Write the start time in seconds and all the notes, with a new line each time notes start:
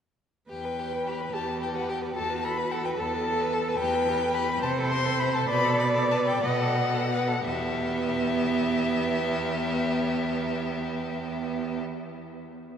0.50 E2 G4 B4 G5
0.65 B4
0.79 G4
0.92 B4
1.07 G4 B5
1.20 B4
1.33 E2 G4 A5
1.48 B4
1.61 G4 G5
1.75 B4 F#5
1.89 G4 G5
2.02 B4
2.16 E2 F#4 A4 A5
2.30 B4
2.44 A4 B5
2.58 B4
2.71 A4 F#5
2.84 B4 G5
2.97 E2 A4 A5
3.13 B4
3.28 A4
3.41 B4
3.53 A4
3.68 B4
3.78 E2 G4 B4 G5
3.95 B4
4.09 G4
4.22 B4
4.34 G4 B5
4.49 B4
4.61 C3 C5 A5
4.78 A4
4.90 C5 C6
5.05 A4
5.19 C5 B5
5.34 A4 A5
5.48 B2 B4 D5 B5
5.65 A4
5.80 B4 B5
5.95 A4
6.11 B4 A5
6.27 A4 G5
6.42 B2 B4 D#5 F#5
6.60 A4
6.76 B4
6.93 A4
7.12 B4
7.27 A4
7.45 E2 B3 G4 E5